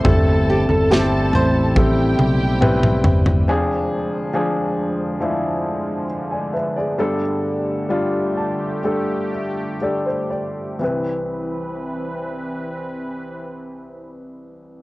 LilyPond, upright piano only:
<<
  \new Staff \with { instrumentName = "Upright piano" } { \time 4/4 \key c \major \tempo 4 = 66 << { r1 | r2. r16 <d'' aes''>16 <b' e''>16 <aes' d''>16~ | <aes' d''>16 r4 r16 a''8 g''8 e''8 d''16 c''16 d''8 | r1 | } \\ { <g c' e' a'>4 <g c' e' g'>4 <g c' e' a'>4 <g c' e' b'>4 | <f d' aes'>4 <f d' aes'>4 <f d' e'>4 r4 | <g d' a'>4 <g d' f'>4 <g d' a'>4 <g d' a'>4 | <e c' b'>1 | } >> }
  \new Staff \with { instrumentName = "Upright piano" } { \clef bass \time 4/4 \key c \major g,4. r2 r8 | <f,, f,>1 | <g,, g,>1 | c,1 | }
>>